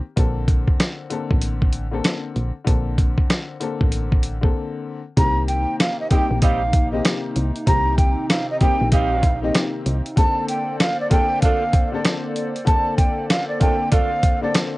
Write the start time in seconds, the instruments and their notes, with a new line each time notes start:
0.16 fm bass A#1, upright piano D3 A#3 C4 A4, kick, closed hi-hat
0.48 kick, closed hi-hat
0.68 kick
0.80 cross-stick, snare, closed hi-hat
1.10 upright piano D3 A#3 C4 A4, closed hi-hat
1.31 fm bass A1, kick
1.42 closed hi-hat
1.62 kick
1.73 closed hi-hat
1.91 upright piano D3 A#3 C4 A4
2.04 cross-stick, snare, closed hi-hat
2.36 fm bass A#1, closed hi-hat
2.65 fm bass A#1, upright piano D3 A#3 C4 A4, kick, closed hi-hat
2.98 kick, closed hi-hat
3.18 kick
3.30 cross-stick, snare, closed hi-hat
3.60 upright piano D3 A#3 C4 A4, closed hi-hat
3.81 fm bass A1, kick
3.92 closed hi-hat
4.12 kick
4.23 closed hi-hat
4.41 upright piano D3 A#3 C4 A4, kick
5.16 fm bass C2, analog synth pad C3 A#3 D#4, upright piano D#3 A#3 C4 G4, flute A#5, kick, closed hi-hat
5.48 flute G5, closed hi-hat
5.80 flute F5, cross-stick, snare, closed hi-hat
6.00 flute D#5
6.10 upright piano D#3 A#3 C4 G4, horn section G3 C4 D#4 G4, flute G5, kick, closed hi-hat
6.31 fm bass A#1
6.42 horn section G3 C4 D#4 G4, flute F5, kick, closed hi-hat
6.73 kick, closed hi-hat
6.92 upright piano D#3 A#3 C4 G4, flute D#5
7.05 cross-stick, snare, closed hi-hat
7.36 fm bass C2, closed hi-hat
7.56 closed hi-hat
7.66 fm bass C2, upright piano D#3 A#3 C4 G4, analog synth pad C4, flute A#5, kick, closed hi-hat
7.98 flute G5, kick, closed hi-hat
8.29 flute F5, cross-stick, snare, closed hi-hat
8.50 flute D#5
8.61 upright piano D#3 A#3 C4 G4, horn section G3 C4 D#4 G4, flute G5, kick, closed hi-hat
8.81 fm bass A#1
8.92 horn section G3 C4 D#4 G4, flute F5, kick, closed hi-hat
9.23 kick, closed hi-hat
9.42 upright piano D#3 A#3 C4 G4, flute D#5
9.55 cross-stick, snare, closed hi-hat
9.86 fm bass C2, closed hi-hat
10.06 closed hi-hat
10.16 upright piano D3 A#3 C4 A4, analog synth pad A#3 A4 C5 D5, flute A5, kick, closed hi-hat
10.48 flute G5, closed hi-hat
10.79 flute F5, cross-stick, snare, closed hi-hat
11.00 flute D5
11.10 upright piano D3 A#3 C4 A4, horn section A3 D4 F4 A4, flute G5, kick, closed hi-hat
11.42 horn section A3 D4 F4 A4, flute F5, kick, closed hi-hat
11.73 kick, closed hi-hat
11.92 upright piano D3 A#3 C4 A4, flute D5
12.05 cross-stick, snare, closed hi-hat
12.36 closed hi-hat
12.56 closed hi-hat
12.65 upright piano D3 A#3 C4 A4, flute A5, kick, closed hi-hat
12.97 flute G5, kick, closed hi-hat
13.30 flute F5, cross-stick, snare, closed hi-hat
13.48 flute D5
13.60 upright piano D3 A#3 C4 A4, horn section A3 D4 F4 A4, flute G5, kick, closed hi-hat
13.91 horn section A3 D4 F4 A4, flute F5, kick, closed hi-hat
14.23 kick, closed hi-hat
14.41 upright piano D3 A#3 C4 A4, flute D5
14.55 cross-stick, snare, closed hi-hat